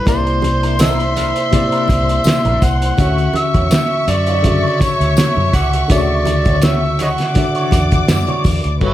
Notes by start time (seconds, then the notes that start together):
0.06 C2 C3 A#3 D4 E4 A#4 C5 D5 C6, kick, closed hi-hat, tambourine, muted conga
0.26 muted clean electric guitar stroke, closed hi-hat
0.42 muted clean electric guitar stroke, closed hi-hat, muted conga, high conga
0.63 D4 E4 A#4, closed hi-hat
0.79 D4 E4 A#4 E5, snare, closed hi-hat, tambourine, muted conga, high conga
1.00 muted clean electric guitar stroke, closed hi-hat
1.16 D4 E4 A#4, closed hi-hat, tambourine, high conga
1.36 muted clean electric guitar stroke, closed hi-hat
1.51 C3 A#3 E4 D5, muted clean electric guitar stroke, kick, closed hi-hat, muted conga, low conga
1.72 D4 E4 A#4, closed hi-hat
1.88 C2, kick, closed hi-hat, tambourine, muted conga, high conga
2.09 muted clean electric guitar stroke, closed hi-hat
2.24 muted clean electric guitar stroke, snare, closed hi-hat, tambourine, muted conga, high conga
2.45 A#1 D4 E4 A#4, closed hi-hat, low conga
2.62 C2 F#5, muted clean electric guitar stroke, kick, closed hi-hat, tambourine
2.82 muted clean electric guitar stroke, closed hi-hat
2.97 D2 D3 C#4 E4 F#4 C#5 E5 C#6, kick, closed hi-hat, tambourine, muted conga
3.18 closed hi-hat
3.34 E5, muted clean electric guitar stroke, closed hi-hat, high conga
3.54 E2 E4 F#4 C#5, kick, closed hi-hat
3.71 muted clean electric guitar stroke, snare, closed hi-hat, tambourine, high conga
3.91 muted clean electric guitar stroke
4.08 F#2 D5, closed hi-hat, tambourine, high conga
4.27 E4 F#4 D5, closed hi-hat
4.42 C#3 D3 F#4 E5, muted clean electric guitar stroke, kick, closed hi-hat, muted conga, low conga
4.64 E4 F#4 C#5
4.80 C#5, muted fingered electric bass stroke, kick, closed hi-hat, tambourine, high conga
5.00 D2, muted clean electric guitar stroke, closed hi-hat
5.17 muted clean electric guitar stroke, snare, closed hi-hat, tambourine, high conga
5.36 F#2, muted clean electric guitar stroke, low conga
5.53 C#2 E4 F#4 D5 F#5, kick, closed hi-hat, tambourine, muted conga
5.73 muted clean electric guitar stroke, closed hi-hat
5.88 D2 C#3 D3 E4 F#4 C#5 D5 E5, kick, closed hi-hat, tambourine, muted conga
6.09 muted clean electric guitar stroke
6.25 muted clean electric guitar stroke, closed hi-hat, tambourine, muted conga, high conga
6.45 E4 F#4 C#5, kick, closed hi-hat
6.62 E4 F#4 C#5 E5, snare, closed hi-hat, tambourine, muted conga, high conga
6.82 muted clean electric guitar stroke
6.99 E4 F#4 C#5 D#5 F#5, closed hi-hat, tambourine, muted conga, high conga
7.18 muted clean electric guitar stroke, snare, closed hi-hat
7.34 D3 D4 F#4 D5 E5 D6, muted clean electric guitar stroke, kick, closed hi-hat, muted conga, low conga
7.55 E4 F#4 C#5, closed hi-hat
7.71 E2, muted clean electric guitar stroke, kick, closed hi-hat, tambourine, muted conga, high conga
7.92 muted clean electric guitar stroke, kick, closed hi-hat
8.08 F#2, muted clean electric guitar stroke, snare, closed hi-hat, tambourine, muted conga, high conga
8.27 E4 F#4 C#5, closed hi-hat, low conga
8.44 E2, muted clean electric guitar stroke, kick, open hi-hat, tambourine
8.64 D2, muted clean electric guitar stroke, closed hi-hat
8.80 G1 G3 F#4 A4 B4 C#5 C#6, kick, crash, muted conga
8.86 B4 C#5 E5